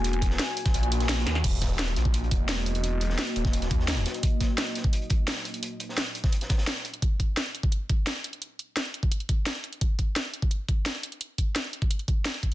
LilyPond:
<<
  \new Staff \with { instrumentName = "Analog synth pad" } { \time 4/4 \key ees \phrygian \tempo 4 = 172 <bes ges' aes''>1 | <bes ges' ees''>1~ | <bes ges' ees''>1~ | <bes ges' ees''>1~ |
<bes ges' ees''>1~ | <bes ges' ees''>1~ | <bes ges' ees''>1 | r1 |
r1 | }
  \new Staff \with { instrumentName = "Detuned saw bass" } { \clef bass \time 4/4 \key ees \phrygian fes,,4 r4 bes,,4. ees,8 | ees,,4. bes,,4 fes,,4.~ | fes,,4 r8 ees,,4 ees,4 r8 | r1 |
r1 | r1 | r1 | r1 |
r1 | }
  \new DrumStaff \with { instrumentName = "Drums" } \drummode { \time 4/4 hh16 hh16 <hh bd>16 sn16 <hh sn>16 hh16 hh16 <hh bd sn>16 hh16 hh16 hh16 <hh sn>16 <hh sn>16 sn16 <hh sn>16 <hh sn>16 | <cymc hh bd>8 <hh bd sn>8 <hh sn>16 hh16 <hh sn>16 bd16 hh16 hh16 <hh bd>8 <hh sn>16 <hh sn>16 hh16 hh16 | hh8 hh16 sn16 <hh sn>16 hh16 hh16 <bd sn>16 hh16 <hh sn>16 <hh bd>16 sn16 <hh sn>16 hh16 <hh sn>16 hh16 | <hh bd>8 <hh bd sn>8 <hh sn>16 hh16 <hh sn>16 bd16 hh16 hh16 <hh bd>8 <hh sn>16 <hh sn>16 hh16 hh16 |
hh8 hh16 sn16 <hh sn>16 hh16 hh16 <bd sn>16 hh16 <hh sn>16 <hh bd sn>16 <hh sn>16 <hh sn>16 <hh sn>16 hh16 hh16 | <hh bd>8 <hh bd>8 <hh sn>16 hh16 hh16 bd16 hh8 <hh bd>8 <hh sn>16 hh16 hh16 hh16 | hh8 hh8 <hh sn>16 hh16 hh16 bd16 hh16 hh16 <hh bd>8 <hh sn>16 hh16 hh16 hh16 | <hh bd>8 <hh bd>8 <hh sn>16 hh16 hh16 bd16 hh8 <hh bd>8 <hh sn>16 hh16 hh16 hh16 |
hh8 <hh bd>8 <hh sn>16 hh16 hh16 bd16 hh16 hh16 <hh bd>8 <hh sn>16 hh16 <hh bd>8 | }
>>